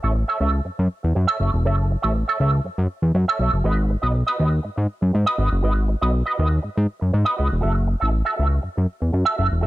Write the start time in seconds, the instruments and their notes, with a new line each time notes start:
0.03 analog synth bass A1, clean electric guitar A4 C#5 E5
0.15 muted clean electric guitar stroke
0.28 clean electric guitar A4 C#5 E5
0.40 analog synth bass C#2, clean electric guitar A4 C#5 E5
0.53 muted clean electric guitar stroke
0.65 analog synth bass F#2, muted clean electric guitar stroke
0.78 analog synth bass F#2, muted clean electric guitar stroke
1.03 analog synth bass E2, muted clean electric guitar stroke
1.15 analog synth bass F#2, muted clean electric guitar stroke
1.27 clean electric guitar A4 C#5 E5
1.39 analog synth bass F#1, clean electric guitar A4 C#5 E5
1.53 analog synth bass E1, muted clean electric guitar stroke
1.65 analog synth bass F#1, clean electric guitar A4 C#5 E5
1.78 muted clean electric guitar stroke
1.90 muted clean electric guitar stroke
2.02 analog synth bass A1, clean electric guitar A4 C#5 E5
2.15 muted clean electric guitar stroke
2.28 clean electric guitar A4 C#5 E5
2.40 analog synth bass C#2, clean electric guitar A4 C#5 E5
2.53 muted clean electric guitar stroke
2.65 analog synth bass F#2, muted clean electric guitar stroke
2.78 analog synth bass F#2, muted clean electric guitar stroke
3.02 analog synth bass E2, muted clean electric guitar stroke
3.15 analog synth bass F#2, muted clean electric guitar stroke
3.28 clean electric guitar A4 C#5 E5
3.39 analog synth bass B1, clean electric guitar A4 C#5 E5
3.53 analog synth bass F#1, muted clean electric guitar stroke
3.64 analog synth bass G#1, clean electric guitar F#4 B4 D#5
3.78 muted clean electric guitar stroke
3.90 muted clean electric guitar stroke
4.02 analog synth bass B1, clean electric guitar F#4 B4 D#5
4.14 muted clean electric guitar stroke
4.27 clean electric guitar F#4 B4 D#5
4.38 analog synth bass D#2, clean electric guitar F#4 B4 D#5
4.52 muted clean electric guitar stroke
4.63 analog synth bass G#2, muted clean electric guitar stroke
4.76 analog synth bass G#2, muted clean electric guitar stroke
5.01 analog synth bass F#2, muted clean electric guitar stroke
5.13 analog synth bass G#2, muted clean electric guitar stroke
5.26 clean electric guitar F#4 B4 D#5
5.38 analog synth bass G#1, clean electric guitar F#4 B4 D#5
5.52 analog synth bass F#1, muted clean electric guitar stroke
5.63 analog synth bass G#1, clean electric guitar F#4 B4 D#5
5.76 muted clean electric guitar stroke
5.88 muted clean electric guitar stroke
6.01 analog synth bass B1, clean electric guitar F#4 B4 D#5
6.13 muted clean electric guitar stroke
6.26 clean electric guitar F#4 B4 D#5
6.38 analog synth bass D#2, clean electric guitar F#4 B4 D#5
6.51 muted clean electric guitar stroke
6.62 analog synth bass G#2, muted clean electric guitar stroke
6.76 analog synth bass G#2, muted clean electric guitar stroke
7.00 analog synth bass F#2, muted clean electric guitar stroke
7.13 analog synth bass G#2, muted clean electric guitar stroke
7.25 clean electric guitar F#4 B4 D#5
7.37 analog synth bass C#2, clean electric guitar F#4 B4 D#5
7.50 analog synth bass E1, muted clean electric guitar stroke
7.61 analog synth bass F#1, clean electric guitar F#4 A4 E5
7.75 muted clean electric guitar stroke
7.87 muted clean electric guitar stroke
8.00 analog synth bass A1, clean electric guitar F#4 A4 E5
8.12 muted clean electric guitar stroke
8.25 clean electric guitar F#4 A4 E5
8.36 analog synth bass C#2, clean electric guitar F#4 A4 E5
8.50 muted clean electric guitar stroke
8.62 analog synth bass F#2, muted clean electric guitar stroke
8.76 analog synth bass F#2, muted clean electric guitar stroke
9.00 analog synth bass E2, muted clean electric guitar stroke
9.12 analog synth bass F#2, muted clean electric guitar stroke
9.25 clean electric guitar F#4 A4 E5
9.36 analog synth bass F#1, clean electric guitar F#4 A4 E5
9.50 analog synth bass E1, muted clean electric guitar stroke
9.61 clean electric guitar F#4 A4 E5